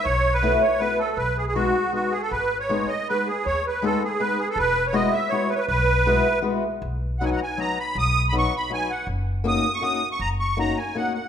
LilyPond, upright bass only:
\new Staff \with { instrumentName = "Upright bass" } { \clef bass \time 3/4 \key e \major \tempo 4 = 160 b,,2 r4 | b,,2 r4 | gis,,2 r4 | dis,2 r4 |
e,,2 r4 | b,,2 r4 | \key b \major b,,2 r4 | b,,2 r4 |
fis,,2 r4 | fis,,2 r4 | }